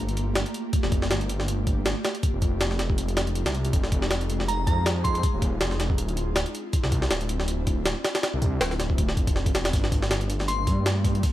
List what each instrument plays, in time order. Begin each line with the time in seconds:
Already playing: detuned saw bass G1, ambient pad A3 A#3 F4 G4
0.09 closed hi-hat
0.17 closed hi-hat
0.35 snare, closed hi-hat
0.46 closed hi-hat
0.54 closed hi-hat
0.73 kick, closed hi-hat
0.83 detuned saw bass F1, snare
0.92 kick, closed hi-hat
1.02 snare
1.10 detuned saw bass G1, snare, closed hi-hat
1.21 closed hi-hat
1.29 closed hi-hat
1.40 snare
1.48 closed hi-hat
1.67 kick, closed hi-hat
1.86 snare, closed hi-hat
2.05 snare, closed hi-hat
2.15 closed hi-hat
2.23 ambient pad G#3 D#4, kick, closed hi-hat
2.33 detuned saw bass F1
2.42 kick, closed hi-hat
2.60 detuned saw bass F1, snare, closed hi-hat
2.71 snare
2.79 snare, closed hi-hat
2.90 kick
2.98 closed hi-hat
3.08 closed hi-hat
3.17 snare, closed hi-hat
3.27 closed hi-hat
3.35 closed hi-hat
3.46 detuned saw bass C2, snare, closed hi-hat
3.55 closed hi-hat
3.65 closed hi-hat
3.73 detuned saw bass F1, ambient pad G#4, kick, closed hi-hat
3.84 snare
3.92 kick, closed hi-hat
4.02 snare
4.11 snare, closed hi-hat
4.21 closed hi-hat
4.30 closed hi-hat
4.40 snare
4.48 synth bell A#5, closed hi-hat
4.67 detuned saw bass F2, synth bell A#5, kick, closed hi-hat
4.86 snare, closed hi-hat
5.04 synth bell C6, kick, closed hi-hat
5.14 synth bell C6, closed hi-hat
5.23 kick, closed hi-hat
5.33 detuned saw bass D#1
5.42 kick, closed hi-hat
5.61 detuned saw bass F1, snare, closed hi-hat
5.71 snare
5.80 snare, closed hi-hat
5.90 kick
5.98 detuned saw bass D1, ambient pad C4 D4 E4, closed hi-hat
6.08 closed hi-hat
6.17 closed hi-hat
6.36 snare, closed hi-hat
6.46 closed hi-hat
6.55 closed hi-hat
6.73 kick, closed hi-hat
6.84 detuned saw bass C2, snare
6.92 kick, closed hi-hat
7.02 snare
7.10 detuned saw bass D1, snare, closed hi-hat
7.21 closed hi-hat
7.29 closed hi-hat
7.40 snare
7.48 closed hi-hat
7.67 kick, closed hi-hat
7.85 snare, closed hi-hat
8.04 snare, closed hi-hat
8.15 snare, closed hi-hat
8.23 snare, closed hi-hat
8.34 detuned saw bass C2
8.42 kick, closed hi-hat
8.61 detuned saw bass D1, snare, closed hi-hat
8.71 snare
8.80 snare, closed hi-hat
8.90 kick
8.98 kick, closed hi-hat
9.09 snare
9.17 detuned saw bass F1, kick, closed hi-hat
9.27 kick, closed hi-hat
9.36 snare
9.46 kick, closed hi-hat
9.54 detuned saw bass E1, snare, closed hi-hat
9.65 snare, closed hi-hat
9.73 detuned saw bass G1, ambient pad A3 A#3 F4 G4, kick, closed hi-hat
9.84 snare
9.92 kick, closed hi-hat
10.02 snare
10.11 snare, closed hi-hat
10.21 closed hi-hat
10.30 closed hi-hat
10.39 snare, closed hi-hat
10.48 synth bell C6, closed hi-hat
10.67 detuned saw bass G2, kick, closed hi-hat
10.86 snare, closed hi-hat
11.04 kick, closed hi-hat
11.15 closed hi-hat
11.23 kick, closed hi-hat